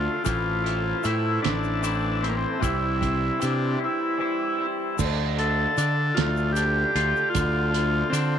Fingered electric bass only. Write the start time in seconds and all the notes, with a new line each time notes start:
0.26 A1
1.05 A2
1.45 A1
2.63 C2
3.43 C3
4.99 D2
5.77 D3
6.17 D2
6.95 D2
7.36 D2
8.12 D3